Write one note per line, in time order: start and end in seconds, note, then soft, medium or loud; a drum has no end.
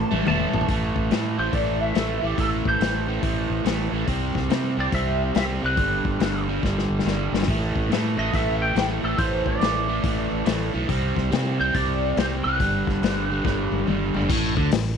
0.00 0.10 E3 loud
0.00 0.27 A5 loud
0.11 0.22 A1 medium
0.11 0.24 A2 medium
0.11 0.26 E3 medium
0.11 0.25 A3 medium
0.11 high tom medium
0.26 0.45 E1 medium
0.26 0.67 A2 medium
0.26 0.68 E3 medium
0.26 0.69 A3 medium
0.26 0.68 A5 loud
0.26 mid tom loud
0.40 mid tom medium
0.54 0.64 A1 medium
0.54 floor tom loud
0.61 floor tom medium
0.68 0.94 A1 medium
0.68 1.10 A2 medium
0.68 1.11 E3 medium
0.68 1.12 A3 medium
0.68 kick medium
0.68 open hi-hat soft
0.96 1.10 A1 medium
0.96 kick medium
1.11 1.37 A2 medium
1.11 1.36 A2 medium
1.11 1.38 E3 medium
1.11 1.39 A3 medium
1.11 snare loud
1.11 open hi-hat soft
1.38 1.52 A1 medium
1.38 1.52 A2 medium
1.38 1.53 E3 medium
1.38 1.53 A3 medium
1.38 1.53 C5 medium
1.53 1.92 A1 medium
1.53 1.94 A2 medium
1.53 1.95 E3 medium
1.53 1.95 A3 medium
1.53 1.81 D5 medium
1.53 kick medium
1.53 open hi-hat soft
1.81 2.24 E5 loud
1.95 2.21 A1 medium
1.95 2.21 A2 medium
1.95 2.22 E3 medium
1.95 2.22 A3 medium
1.95 snare loud
1.95 open hi-hat soft
2.23 2.37 A1 medium
2.23 2.37 A2 medium
2.23 2.38 E3 medium
2.23 2.38 A3 medium
2.23 2.38 G4 medium
2.38 2.63 A1 medium
2.38 2.80 A2 medium
2.38 2.81 E3 medium
2.38 2.82 A3 loud
2.38 2.47 A4 medium
2.38 kick loud
2.38 open hi-hat soft
2.65 2.79 A1 medium
2.65 3.90 C5 medium
2.65 kick medium
2.80 3.19 A1 medium
2.80 3.06 A2 medium
2.80 3.08 E3 medium
2.80 3.07 A3 medium
2.80 snare loud
2.80 open hi-hat soft
3.07 3.21 A2 medium
3.07 3.21 E3 medium
3.07 3.23 A3 medium
3.22 3.48 A1 medium
3.22 3.64 A2 medium
3.22 3.64 E3 medium
3.22 3.65 A3 medium
3.22 kick medium
3.22 open hi-hat soft
3.50 3.64 A1 medium
3.65 3.90 A1 medium
3.65 3.91 A2 medium
3.65 3.93 E3 medium
3.65 3.93 A3 medium
3.65 snare medium
3.65 open hi-hat soft
3.92 4.06 A1 medium
3.92 4.07 A2 medium
3.92 4.07 E3 medium
3.92 4.08 A3 medium
4.07 4.33 C2 medium
4.07 4.48 C3 medium
4.07 4.50 G3 medium
4.07 4.50 C4 medium
4.07 kick medium
4.07 open hi-hat soft
4.35 4.49 C2 medium
4.35 kick medium
4.35 snare soft
4.50 4.76 C3 medium
4.50 4.75 C3 medium
4.50 4.78 G3 medium
4.50 4.78 C4 medium
4.50 snare loud
4.50 open hi-hat soft
4.77 4.91 C2 medium
4.77 4.91 C3 medium
4.77 4.92 G3 medium
4.77 4.92 C4 medium
4.77 4.85 D5 medium
4.92 5.32 C2 medium
4.92 5.33 C3 medium
4.92 5.34 G3 medium
4.92 5.34 C4 loud
4.92 5.35 E5 medium
4.92 kick loud
4.92 open hi-hat soft
5.34 5.61 C2 medium
5.34 5.61 C3 medium
5.34 5.62 G3 medium
5.34 5.62 C4 medium
5.34 5.43 E5 medium
5.34 snare loud
5.34 open hi-hat soft
5.62 5.77 C2 medium
5.62 5.76 C3 medium
5.62 5.77 G3 medium
5.62 5.77 C4 medium
5.62 6.45 B4 medium
5.77 6.03 G1 medium
5.77 6.19 G2 medium
5.77 6.20 D3 medium
5.77 6.21 G3 medium
5.77 kick loud
5.77 open hi-hat soft
6.05 6.19 G1 medium
6.05 kick medium
6.20 6.59 G1 medium
6.20 6.47 G2 medium
6.20 6.48 D3 medium
6.20 6.48 G3 medium
6.20 snare loud
6.20 open hi-hat soft
6.48 6.62 G2 medium
6.48 6.63 D3 medium
6.48 6.63 G3 medium
6.63 6.88 G1 medium
6.63 7.05 G2 medium
6.63 7.05 D3 medium
6.63 7.06 G3 loud
6.63 kick medium
6.63 snare medium
6.78 snare soft
6.90 7.04 G1 medium
6.99 snare medium
7.05 7.31 G1 medium
7.05 7.32 G2 medium
7.05 7.33 D3 medium
7.05 7.33 G3 medium
7.05 snare medium
7.32 7.47 G1 medium
7.32 7.47 G2 medium
7.32 7.48 D3 medium
7.32 7.48 G3 medium
7.32 snare medium
7.43 snare medium
7.48 7.73 A1 medium
7.48 7.90 A2 medium
7.48 7.91 E3 medium
7.48 7.92 A3 medium
7.48 kick loud
7.48 open hi-hat soft
7.76 7.89 A1 medium
7.76 kick medium
7.90 8.15 A2 medium
7.90 8.16 A2 medium
7.90 8.17 E3 medium
7.90 8.18 A3 medium
7.90 snare medium
7.90 open hi-hat soft
8.17 8.32 A1 medium
8.17 8.31 A2 medium
8.17 8.33 E3 medium
8.17 8.33 A3 medium
8.17 8.34 D#5 medium
8.32 8.73 A1 medium
8.32 8.74 A2 medium
8.32 8.75 E3 medium
8.32 8.75 A3 loud
8.32 8.62 E5 medium
8.32 kick medium
8.32 open hi-hat soft
8.62 8.76 G5 medium
8.75 9.01 A1 medium
8.75 9.01 A2 medium
8.75 9.03 E3 medium
8.75 9.02 A3 medium
8.75 8.85 G5 medium
8.75 snare loud
8.75 open hi-hat soft
9.02 9.17 A1 medium
9.02 9.16 A2 medium
9.02 9.18 E3 medium
9.02 9.18 A3 medium
9.02 9.18 A4 medium
9.18 9.44 A1 medium
9.18 9.60 A2 medium
9.18 9.62 E3 medium
9.18 9.61 A3 medium
9.18 9.47 C5 medium
9.18 kick loud
9.18 open hi-hat soft
9.46 9.60 A1 medium
9.46 10.71 D5 medium
9.46 kick medium
9.61 10.00 A1 medium
9.61 9.87 A2 medium
9.61 9.88 E3 medium
9.61 9.88 A3 medium
9.61 snare loud
9.61 open hi-hat soft
9.88 10.02 A2 medium
9.88 10.03 E3 medium
9.88 10.04 A3 medium
10.03 10.29 A1 medium
10.03 10.44 A2 medium
10.03 10.45 E3 medium
10.03 10.45 A3 loud
10.03 kick loud
10.03 open hi-hat soft
10.31 10.45 A1 medium
10.45 10.72 A1 medium
10.45 10.72 A2 medium
10.45 10.73 E3 medium
10.45 10.74 A3 medium
10.45 snare loud
10.45 open hi-hat medium
10.73 10.88 B1 medium
10.73 10.88 A2 medium
10.73 10.88 E3 medium
10.73 10.89 A3 medium
10.89 11.14 C2 medium
10.89 11.30 C3 medium
10.89 11.31 G3 medium
10.89 11.31 C4 loud
10.89 kick loud
10.89 open hi-hat soft
11.16 11.31 C2 medium
11.16 kick medium
11.16 snare soft
11.31 11.57 C3 medium
11.31 11.59 G3 medium
11.31 11.58 C4 medium
11.31 snare loud
11.31 open hi-hat soft
11.58 11.74 C2 medium
11.58 11.73 C3 medium
11.58 11.73 G3 medium
11.58 11.74 C4 medium
11.58 11.76 C5 medium
11.74 12.14 C2 medium
11.74 12.16 C3 medium
11.74 12.17 G3 medium
11.74 12.18 C4 loud
11.74 12.19 D5 loud
11.74 kick loud
11.74 open hi-hat soft
12.17 12.42 C2 medium
12.17 12.44 C3 medium
12.17 12.44 G3 medium
12.17 12.45 C4 medium
12.17 12.25 C5 medium
12.17 snare loud
12.17 open hi-hat soft
12.44 12.59 C2 medium
12.44 12.59 C3 medium
12.44 12.59 G3 medium
12.44 12.60 C4 medium
12.44 13.83 B4 medium
12.60 12.85 G1 medium
12.60 13.01 G2 medium
12.60 13.03 D3 medium
12.60 13.03 G3 loud
12.60 kick loud
12.60 open hi-hat soft
12.87 13.01 G1 medium
12.87 kick medium
12.87 snare soft
13.02 13.41 G1 medium
13.02 13.29 G2 medium
13.02 13.30 D3 medium
13.02 13.30 G3 medium
13.02 snare loud
13.02 open hi-hat soft
13.30 13.44 G2 medium
13.30 13.44 D3 medium
13.30 13.45 G3 medium
13.45 13.70 G1 medium
13.45 13.86 G2 medium
13.45 13.87 D3 loud
13.45 13.88 G3 loud
13.45 kick loud
13.45 snare medium
13.71 13.86 G1 medium
13.71 high tom medium
13.79 high tom medium
13.87 14.13 G1 medium
13.87 14.14 G2 medium
13.87 14.15 D3 medium
13.87 14.15 G3 medium
13.87 mid tom medium
14.14 14.28 G1 medium
14.14 14.29 G2 medium
14.14 14.29 D3 medium
14.14 14.30 G3 medium
14.14 floor tom medium
14.22 floor tom medium
14.30 14.55 A1 loud
14.30 14.56 A2 loud
14.30 kick loud
14.30 crash loud
14.57 14.71 D2 medium
14.57 14.71 D3 loud
14.57 kick loud
14.71 14.97 A1 medium
14.71 14.94 A2 medium
14.71 snare loud
14.71 open hi-hat medium